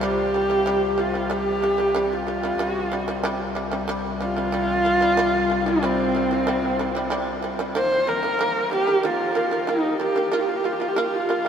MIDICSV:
0, 0, Header, 1, 4, 480
1, 0, Start_track
1, 0, Tempo, 643777
1, 16, Time_signature, 4, 2, 24, 8
1, 8563, End_track
2, 0, Start_track
2, 0, Title_t, "Horsehead fiddle"
2, 0, Program_c, 0, 110
2, 17, Note_on_c, 0, 67, 87
2, 739, Note_on_c, 0, 65, 77
2, 750, Note_off_c, 0, 67, 0
2, 979, Note_on_c, 0, 67, 93
2, 990, Note_off_c, 0, 65, 0
2, 1587, Note_on_c, 0, 65, 79
2, 1598, Note_off_c, 0, 67, 0
2, 2005, Note_off_c, 0, 65, 0
2, 2005, Note_on_c, 0, 66, 79
2, 2117, Note_off_c, 0, 66, 0
2, 2117, Note_on_c, 0, 65, 79
2, 2236, Note_off_c, 0, 65, 0
2, 2236, Note_on_c, 0, 66, 79
2, 2355, Note_off_c, 0, 66, 0
2, 2355, Note_on_c, 0, 65, 79
2, 2762, Note_off_c, 0, 65, 0
2, 3141, Note_on_c, 0, 65, 111
2, 4236, Note_on_c, 0, 60, 88
2, 4247, Note_off_c, 0, 65, 0
2, 5691, Note_off_c, 0, 60, 0
2, 5795, Note_on_c, 0, 72, 91
2, 6026, Note_on_c, 0, 70, 95
2, 6037, Note_off_c, 0, 72, 0
2, 6502, Note_off_c, 0, 70, 0
2, 6510, Note_on_c, 0, 67, 101
2, 6749, Note_on_c, 0, 65, 90
2, 6760, Note_off_c, 0, 67, 0
2, 7225, Note_on_c, 0, 63, 82
2, 7236, Note_off_c, 0, 65, 0
2, 7460, Note_off_c, 0, 63, 0
2, 7472, Note_on_c, 0, 67, 79
2, 7696, Note_on_c, 0, 65, 76
2, 7707, Note_off_c, 0, 67, 0
2, 7755, Note_on_c, 0, 67, 71
2, 7766, Note_off_c, 0, 65, 0
2, 7817, Note_on_c, 0, 65, 70
2, 7828, Note_off_c, 0, 67, 0
2, 7873, Note_on_c, 0, 67, 78
2, 7885, Note_off_c, 0, 65, 0
2, 7940, Note_on_c, 0, 65, 67
2, 7951, Note_off_c, 0, 67, 0
2, 7993, Note_on_c, 0, 67, 68
2, 8004, Note_off_c, 0, 65, 0
2, 8048, Note_on_c, 0, 65, 76
2, 8059, Note_off_c, 0, 67, 0
2, 8111, Note_on_c, 0, 67, 73
2, 8123, Note_off_c, 0, 65, 0
2, 8170, Note_on_c, 0, 65, 74
2, 8182, Note_off_c, 0, 67, 0
2, 8234, Note_on_c, 0, 67, 79
2, 8245, Note_off_c, 0, 65, 0
2, 8316, Note_on_c, 0, 65, 87
2, 8327, Note_off_c, 0, 67, 0
2, 8563, Note_off_c, 0, 65, 0
2, 8563, End_track
3, 0, Start_track
3, 0, Title_t, "Shamisen"
3, 0, Program_c, 1, 106
3, 9, Note_on_c, 1, 48, 91
3, 22, Note_on_c, 1, 55, 97
3, 205, Note_off_c, 1, 48, 0
3, 212, Note_off_c, 1, 55, 0
3, 256, Note_on_c, 1, 48, 52
3, 267, Note_on_c, 1, 55, 58
3, 353, Note_off_c, 1, 48, 0
3, 358, Note_off_c, 1, 55, 0
3, 371, Note_on_c, 1, 48, 56
3, 379, Note_on_c, 1, 55, 65
3, 470, Note_off_c, 1, 48, 0
3, 474, Note_off_c, 1, 55, 0
3, 491, Note_on_c, 1, 48, 92
3, 502, Note_on_c, 1, 55, 101
3, 687, Note_off_c, 1, 48, 0
3, 692, Note_off_c, 1, 55, 0
3, 728, Note_on_c, 1, 48, 67
3, 740, Note_on_c, 1, 55, 69
3, 829, Note_off_c, 1, 48, 0
3, 835, Note_off_c, 1, 55, 0
3, 850, Note_on_c, 1, 48, 58
3, 860, Note_on_c, 1, 55, 61
3, 950, Note_off_c, 1, 48, 0
3, 955, Note_off_c, 1, 55, 0
3, 967, Note_on_c, 1, 48, 85
3, 976, Note_on_c, 1, 55, 93
3, 1165, Note_off_c, 1, 48, 0
3, 1170, Note_off_c, 1, 55, 0
3, 1211, Note_on_c, 1, 48, 59
3, 1220, Note_on_c, 1, 55, 78
3, 1311, Note_off_c, 1, 48, 0
3, 1316, Note_off_c, 1, 55, 0
3, 1328, Note_on_c, 1, 48, 60
3, 1339, Note_on_c, 1, 55, 62
3, 1430, Note_off_c, 1, 48, 0
3, 1435, Note_off_c, 1, 55, 0
3, 1451, Note_on_c, 1, 48, 85
3, 1460, Note_on_c, 1, 55, 89
3, 1647, Note_off_c, 1, 48, 0
3, 1652, Note_off_c, 1, 55, 0
3, 1691, Note_on_c, 1, 48, 60
3, 1701, Note_on_c, 1, 55, 67
3, 1792, Note_off_c, 1, 48, 0
3, 1797, Note_off_c, 1, 55, 0
3, 1815, Note_on_c, 1, 48, 72
3, 1825, Note_on_c, 1, 55, 77
3, 1914, Note_off_c, 1, 48, 0
3, 1919, Note_off_c, 1, 55, 0
3, 1933, Note_on_c, 1, 48, 87
3, 1941, Note_on_c, 1, 55, 94
3, 2129, Note_off_c, 1, 48, 0
3, 2133, Note_off_c, 1, 55, 0
3, 2174, Note_on_c, 1, 48, 76
3, 2185, Note_on_c, 1, 55, 86
3, 2274, Note_off_c, 1, 48, 0
3, 2279, Note_off_c, 1, 55, 0
3, 2295, Note_on_c, 1, 48, 72
3, 2303, Note_on_c, 1, 55, 79
3, 2394, Note_off_c, 1, 48, 0
3, 2398, Note_off_c, 1, 55, 0
3, 2412, Note_on_c, 1, 48, 107
3, 2423, Note_on_c, 1, 55, 115
3, 2609, Note_off_c, 1, 48, 0
3, 2614, Note_off_c, 1, 55, 0
3, 2648, Note_on_c, 1, 48, 66
3, 2657, Note_on_c, 1, 55, 82
3, 2751, Note_off_c, 1, 48, 0
3, 2755, Note_off_c, 1, 55, 0
3, 2770, Note_on_c, 1, 48, 76
3, 2780, Note_on_c, 1, 55, 83
3, 2872, Note_off_c, 1, 48, 0
3, 2877, Note_off_c, 1, 55, 0
3, 2891, Note_on_c, 1, 48, 97
3, 2901, Note_on_c, 1, 55, 115
3, 3088, Note_off_c, 1, 48, 0
3, 3093, Note_off_c, 1, 55, 0
3, 3135, Note_on_c, 1, 48, 70
3, 3146, Note_on_c, 1, 55, 75
3, 3234, Note_off_c, 1, 48, 0
3, 3240, Note_off_c, 1, 55, 0
3, 3255, Note_on_c, 1, 48, 62
3, 3265, Note_on_c, 1, 55, 66
3, 3354, Note_off_c, 1, 48, 0
3, 3359, Note_off_c, 1, 55, 0
3, 3373, Note_on_c, 1, 48, 75
3, 3383, Note_on_c, 1, 55, 91
3, 3569, Note_off_c, 1, 48, 0
3, 3574, Note_off_c, 1, 55, 0
3, 3616, Note_on_c, 1, 48, 64
3, 3624, Note_on_c, 1, 55, 72
3, 3715, Note_off_c, 1, 48, 0
3, 3719, Note_off_c, 1, 55, 0
3, 3734, Note_on_c, 1, 48, 78
3, 3745, Note_on_c, 1, 55, 91
3, 3834, Note_off_c, 1, 48, 0
3, 3840, Note_off_c, 1, 55, 0
3, 3857, Note_on_c, 1, 48, 112
3, 3868, Note_on_c, 1, 55, 127
3, 4052, Note_off_c, 1, 48, 0
3, 4057, Note_off_c, 1, 55, 0
3, 4099, Note_on_c, 1, 48, 55
3, 4111, Note_on_c, 1, 55, 64
3, 4197, Note_off_c, 1, 48, 0
3, 4203, Note_off_c, 1, 55, 0
3, 4222, Note_on_c, 1, 48, 61
3, 4234, Note_on_c, 1, 55, 71
3, 4318, Note_off_c, 1, 48, 0
3, 4324, Note_off_c, 1, 55, 0
3, 4344, Note_on_c, 1, 48, 94
3, 4353, Note_on_c, 1, 55, 100
3, 4535, Note_off_c, 1, 48, 0
3, 4540, Note_off_c, 1, 55, 0
3, 4583, Note_on_c, 1, 48, 64
3, 4595, Note_on_c, 1, 55, 68
3, 4678, Note_off_c, 1, 48, 0
3, 4684, Note_off_c, 1, 55, 0
3, 4705, Note_on_c, 1, 48, 57
3, 4716, Note_on_c, 1, 55, 63
3, 4799, Note_off_c, 1, 48, 0
3, 4805, Note_off_c, 1, 55, 0
3, 4823, Note_on_c, 1, 48, 106
3, 4832, Note_on_c, 1, 55, 113
3, 5014, Note_off_c, 1, 48, 0
3, 5019, Note_off_c, 1, 55, 0
3, 5065, Note_on_c, 1, 48, 80
3, 5075, Note_on_c, 1, 55, 80
3, 5159, Note_off_c, 1, 48, 0
3, 5164, Note_off_c, 1, 55, 0
3, 5182, Note_on_c, 1, 48, 75
3, 5193, Note_on_c, 1, 55, 84
3, 5278, Note_off_c, 1, 48, 0
3, 5283, Note_off_c, 1, 55, 0
3, 5296, Note_on_c, 1, 48, 91
3, 5306, Note_on_c, 1, 55, 101
3, 5490, Note_off_c, 1, 48, 0
3, 5495, Note_off_c, 1, 55, 0
3, 5536, Note_on_c, 1, 48, 65
3, 5547, Note_on_c, 1, 55, 79
3, 5634, Note_off_c, 1, 48, 0
3, 5640, Note_off_c, 1, 55, 0
3, 5659, Note_on_c, 1, 48, 81
3, 5667, Note_on_c, 1, 55, 92
3, 5756, Note_off_c, 1, 48, 0
3, 5760, Note_off_c, 1, 55, 0
3, 5779, Note_on_c, 1, 51, 95
3, 5789, Note_on_c, 1, 58, 102
3, 5971, Note_off_c, 1, 51, 0
3, 5976, Note_off_c, 1, 58, 0
3, 6019, Note_on_c, 1, 51, 59
3, 6031, Note_on_c, 1, 58, 73
3, 6115, Note_off_c, 1, 51, 0
3, 6121, Note_off_c, 1, 58, 0
3, 6136, Note_on_c, 1, 51, 62
3, 6146, Note_on_c, 1, 58, 69
3, 6233, Note_off_c, 1, 51, 0
3, 6239, Note_off_c, 1, 58, 0
3, 6256, Note_on_c, 1, 51, 82
3, 6268, Note_on_c, 1, 58, 109
3, 6449, Note_off_c, 1, 51, 0
3, 6455, Note_off_c, 1, 58, 0
3, 6497, Note_on_c, 1, 51, 61
3, 6507, Note_on_c, 1, 58, 72
3, 6593, Note_off_c, 1, 51, 0
3, 6599, Note_off_c, 1, 58, 0
3, 6616, Note_on_c, 1, 51, 61
3, 6627, Note_on_c, 1, 58, 64
3, 6713, Note_off_c, 1, 51, 0
3, 6718, Note_off_c, 1, 58, 0
3, 6736, Note_on_c, 1, 51, 89
3, 6746, Note_on_c, 1, 58, 92
3, 6928, Note_off_c, 1, 51, 0
3, 6934, Note_off_c, 1, 58, 0
3, 6973, Note_on_c, 1, 51, 72
3, 6983, Note_on_c, 1, 58, 80
3, 7071, Note_off_c, 1, 51, 0
3, 7076, Note_off_c, 1, 58, 0
3, 7093, Note_on_c, 1, 51, 64
3, 7102, Note_on_c, 1, 58, 72
3, 7191, Note_off_c, 1, 51, 0
3, 7196, Note_off_c, 1, 58, 0
3, 7212, Note_on_c, 1, 51, 82
3, 7223, Note_on_c, 1, 58, 91
3, 7406, Note_off_c, 1, 51, 0
3, 7411, Note_off_c, 1, 58, 0
3, 7453, Note_on_c, 1, 51, 64
3, 7464, Note_on_c, 1, 58, 70
3, 7550, Note_off_c, 1, 51, 0
3, 7556, Note_off_c, 1, 58, 0
3, 7574, Note_on_c, 1, 51, 72
3, 7585, Note_on_c, 1, 58, 75
3, 7671, Note_off_c, 1, 51, 0
3, 7676, Note_off_c, 1, 58, 0
3, 7691, Note_on_c, 1, 58, 91
3, 7704, Note_on_c, 1, 65, 103
3, 7885, Note_off_c, 1, 58, 0
3, 7891, Note_off_c, 1, 65, 0
3, 7934, Note_on_c, 1, 58, 61
3, 7941, Note_on_c, 1, 65, 61
3, 8030, Note_off_c, 1, 58, 0
3, 8034, Note_off_c, 1, 65, 0
3, 8053, Note_on_c, 1, 58, 56
3, 8064, Note_on_c, 1, 65, 68
3, 8149, Note_off_c, 1, 58, 0
3, 8155, Note_off_c, 1, 65, 0
3, 8175, Note_on_c, 1, 58, 97
3, 8185, Note_on_c, 1, 65, 102
3, 8366, Note_off_c, 1, 58, 0
3, 8371, Note_off_c, 1, 65, 0
3, 8416, Note_on_c, 1, 58, 66
3, 8426, Note_on_c, 1, 65, 72
3, 8511, Note_off_c, 1, 58, 0
3, 8516, Note_off_c, 1, 65, 0
3, 8535, Note_on_c, 1, 58, 59
3, 8563, Note_off_c, 1, 58, 0
3, 8563, End_track
4, 0, Start_track
4, 0, Title_t, "Cello"
4, 0, Program_c, 2, 42
4, 0, Note_on_c, 2, 36, 62
4, 1939, Note_off_c, 2, 36, 0
4, 1943, Note_on_c, 2, 36, 63
4, 5830, Note_off_c, 2, 36, 0
4, 8563, End_track
0, 0, End_of_file